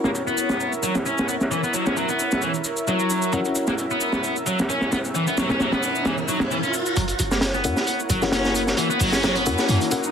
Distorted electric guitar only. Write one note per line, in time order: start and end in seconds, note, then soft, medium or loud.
0.05 0.09 A#3 medium
0.27 0.71 B3 medium
0.83 0.95 F#3 medium
1.06 1.28 C#4 medium
1.29 1.34 B3 medium
1.51 1.61 E3 medium
1.64 1.73 B3 medium
1.74 1.85 F#3 medium
1.86 1.96 C#4 medium
1.97 2.08 F#3 medium
2.09 2.41 B3 medium
2.42 2.52 E3 medium
2.88 3.32 F#3 medium
3.33 3.39 F#3 medium
3.68 3.73 A#3 medium
3.91 4.35 B3 medium
4.47 4.58 F#3 medium
4.70 4.91 C#4 medium
4.92 4.98 B3 medium
5.15 5.24 E3 medium
5.27 5.37 B3 medium
5.38 5.49 F#3 medium
5.50 5.59 C#4 medium
5.60 5.71 F#3 medium
5.72 6.05 B3 medium
6.06 6.15 E3 medium
6.28 6.39 F#3 medium
6.51 6.57 E3 medium
6.64 6.73 C#4 medium
6.97 7.02 F#3 medium
7.32 7.37 A#3 medium
7.54 7.99 B3 medium
8.10 8.22 F#3 medium
8.33 8.55 C#4 medium
8.56 8.61 B3 medium
8.78 8.88 E3 medium
8.90 9.00 B3 medium
9.01 9.12 F#3 medium
9.13 9.23 C#4 medium
9.24 9.35 F#3 medium
9.36 9.68 B3 medium
9.69 9.79 E3 medium